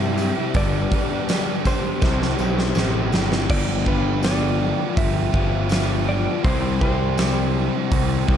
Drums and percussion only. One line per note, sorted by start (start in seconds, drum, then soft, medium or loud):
0.18 open hi-hat medium
0.18 tambourine medium
0.54 kick loud
0.54 open hi-hat medium
0.54 tambourine soft
0.92 kick medium
0.92 open hi-hat medium
1.29 snare loud
1.29 open hi-hat medium
1.29 tambourine loud
1.65 kick medium
1.65 open hi-hat medium
1.65 tambourine medium
2.02 kick loud
2.02 snare medium
2.02 tambourine medium
2.22 snare medium
2.38 tambourine medium
2.59 snare medium
2.75 snare medium
2.75 tambourine loud
3.12 snare loud
3.12 tambourine medium
3.32 snare loud
3.50 kick loud
3.50 crash loud
3.86 kick medium
4.23 snare loud
4.23 open hi-hat medium
4.23 tambourine medium
4.97 kick loud
4.97 open hi-hat medium
5.34 kick loud
5.69 snare loud
5.69 open hi-hat medium
5.69 tambourine medium
6.45 kick loud
6.45 open hi-hat medium
6.81 kick medium
7.18 snare loud
7.18 open hi-hat medium
7.18 tambourine medium
7.92 kick loud
7.92 open hi-hat medium
8.29 kick loud